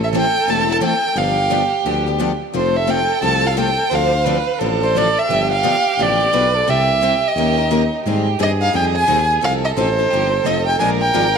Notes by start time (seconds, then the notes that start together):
Already playing: A1 A4
0.04 E5
0.14 E3 A3 C4 E4 A4 G5
0.46 E1 E3 A3 C4 E4 A4 A5
0.69 C4 E4 A4 A5
0.81 E3 A3 C4 E4 A4 G5
1.15 G1 D3 F3 B3 D4 G4 F5
1.50 D3 F3 B3 D4 G4
1.85 D2 D3 F3 B3 D4 G4
2.06 B3 D4 G4
2.19 D3 F3 B3 D4 G4
2.53 F1 F3 A3 C4 F4 A4 C5
2.77 E5
2.87 F3 A3 C4 F4 A4 G5
3.22 C2 F3 A3 C4 F4 A4 A5
3.42 C4 F4 A4
3.47 F5
3.57 F3 A3 C4 F4 A4 G5
3.90 D2 D3 F3 C4 D4 A4 C5
3.95 F5
4.25 D3 F3 C4 D4 A4 B4
4.59 A1 D3 F3 C4 D4 A4
4.83 C4 D4 A4 C5
4.96 D3 F3 C4 D4 A4 D5
5.19 E5
5.29 G1 D3 F3 B3 D4 G4
5.53 F5
5.63 D3 F3 B3 D4 G4
5.97 A1 D3 F3 B3 D4 G4
6.03 D5
6.21 B3 D4 G4
6.33 B1 D3 F3 B3 D4 G4 B4
6.55 A4
6.67 C2 C3 G3 C4 E4 G4 E5
7.02 C3 G3 C4 E4 G4
7.28 D#5
7.35 D#2 D#3 A#3 C#4 G4 A#4
7.58 C#4 G4 A#4
7.71 D#3 A#3 C#4 D#4 G4 A#4
8.06 G#2 D#3 G3 C4 D#4 G4 G#4
8.39 G2 D#3 G3 C4 D#4 G#4 D#5
8.61 C4 D#4 G#4 F5
8.73 F2 D#3 G3 C4 D#4 G#4 G5
8.96 G#5
9.07 D#2 D#3 G3 C4 D#4 G#4
9.41 C2 F3 C4 D#4 A4 F5
9.65 D#5
9.76 A1 F3 C4 D#4 A4 C5
9.99 C4 D#4 A4
10.10 G1 F3 C4 D#4 G4 A4
10.32 A4
10.44 F1 F3 C4 D#4 A4 D#5
10.66 G5
10.79 A#1 F3 G#3 D4 F4 A#4 G#5
11.02 G5
11.14 G#1 F3 G#3 D4 F4 A#4